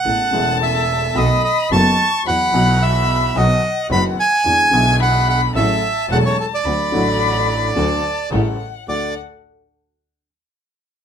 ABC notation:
X:1
M:4/4
L:1/16
Q:1/4=109
K:D
V:1 name="Violin"
a8 b4 c'4 | b4 b4 f8 | ^g4 b4 a8 | b8 a4 f4 |
f2 z12 z2 |]
V:2 name="Bandoneon"
f4 e4 ^d2 d2 a4 | f4 e4 ^d4 b2 ^g2- | ^g4 f2 f2 e4 f c A d- | d12 z4 |
d2 z12 z2 |]
V:3 name="String section"
[B,CA]2 [B,CA]6 [B,^DA]2 z2 [B,DA]2 z2 | [B,EF]2 [B,EF]6 [B,^DF]2 z2 [B,DF]2 z2 | [DE^G]2 [DEG]6 [CFA]2 z2 [CFA]2 z2 | [DFA]2 [DFA]6 [DFA]2 z2 [CGA]2 z2 |
[DFA]2 z12 z2 |]
V:4 name="Upright piano" clef=bass
[A,,,A,,C,A,B,E]2 [E,,,E,,C,A,B,E]6 [B,,,B,,^D,A,B,F]2 z2 [F,,,F,,D,A,B,F]2 z2 | [E,,E,F,B,F]2 [B,,,B,,E,F,B,F]6 [B,,,B,,^D,F,B,F]2 z2 [F,,,F,,D,F,B,F]2 z2 | [E,,D,E,^G,B,E]2 [B,,,B,,D,G,B,E]6 [A,,,A,,C,F,A,E]2 z2 [E,,,E,,C,F,A,E]2 z2 | [D,,D,F,A,F]2 [A,,,A,,D,F,A,F]6 [D,,D,F,A,F]2 z2 [A,,,A,,C,G,A,E]2 z2 |
[D,,A,DF]2 z12 z2 |]
V:5 name="Double bass" clef=bass
A,,,2 E,,,6 B,,,2 z2 F,,,2 z2 | E,,2 B,,,6 B,,,2 z2 F,,,2 z2 | E,,2 B,,,6 A,,,2 z2 E,,,2 z2 | D,,2 A,,,6 D,,2 z2 A,,,2 z2 |
D,,2 z12 z2 |]